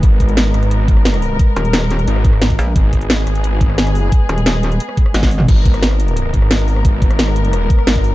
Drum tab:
CC |----------------|----------------|----------------|----------------|
HH |x-xxx-xxx-x-xxo-|x-xxx-xxx-x-xxo-|x-xxx-xxx-x-xxo-|x-xxx-xxx-x-xxo-|
SD |----o-r----ror--|----o----r-ro---|----o-r----ror--|----o----r-roo--|
T2 |----------------|----------------|----------------|---------------o|
BD |o-o-------o-----|o---------o--o--|o-o-------o-----|o---------o--o--|

CC |x---------------|----------------|
HH |x-xxx-xxx-x-xxo-|x-xxx-xxx-x-xxo-|
SD |---ror-----ro--r|---ror--r--ro---|
T2 |----------------|----------------|
BD |o-o-------o-----|o-o-------o--o--|